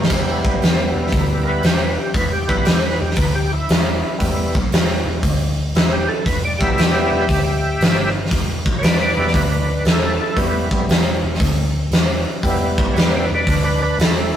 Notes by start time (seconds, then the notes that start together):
0.03 snare
0.10 E1 G3 B3 E4, kick, open hi-hat, splash
0.45 B1, kick
0.62 E1, snare, open hi-hat
0.95 E1
1.07 snare
1.12 D2, kick, open hi-hat
1.43 A#4
1.48 G3 B3 E4 B4
1.63 E1 G4, snare, open hi-hat
1.83 B4
1.98 G4
2.14 E1 B4, kick, open hi-hat
2.32 G4
2.48 B1 G3 B3 E4 B4, kick
2.65 E1 G4, snare, open hi-hat
2.84 B4
3.01 E1 G4
3.10 snare
3.16 D2 B4, kick, open hi-hat
3.35 G4
3.53 E4
3.69 E1, snare, open hi-hat
4.18 E1 G3 B3 E4, kick, open hi-hat
4.55 B1, kick
4.72 E1, snare, open hi-hat
5.06 E1
5.23 D2, kick, open hi-hat
5.75 E1 E4, snare, open hi-hat
5.93 G4
6.09 A4
6.26 E1 B4, kick, open hi-hat
6.45 D5
6.58 B1 G3 B3 E4 G4 E5, kick
6.78 E1, snare, open hi-hat
7.13 E1
7.29 D2, kick, open hi-hat
7.80 G1, snare, open hi-hat
8.25 snare
8.31 E1, kick, open hi-hat
8.66 B1, kick
8.79 B4 C#5
8.83 E1 D5, snare, open hi-hat
9.01 B4 D5
9.16 E1 G3 B3 E4 B4 D5
9.27 snare
9.33 D2 D4 B4, kick, open hi-hat
9.51 D4 B4
9.68 D4 B4
9.85 E1 E4 A4, snare, open hi-hat
10.02 E4 A4
10.21 E4 A4
10.36 E1 G3 B3 E4, kick, open hi-hat
10.71 B1 G3 B3 E4, kick
10.89 E1, snare, open hi-hat
11.23 E1
11.34 snare
11.40 D2, kick, open hi-hat
11.91 E1, snare, open hi-hat
12.43 E1 G3 B3 E4, kick, open hi-hat
12.78 B1, kick
12.94 E1 B4 C#5, open hi-hat
12.98 D5, snare
13.15 B4 D5
13.30 E1
13.35 B4 D5
13.47 D2 D4 B4, kick, open hi-hat
13.64 D4 B4
13.82 D4 B4
13.99 E1 E4 A4, snare, open hi-hat
14.16 E4 A4
14.33 E4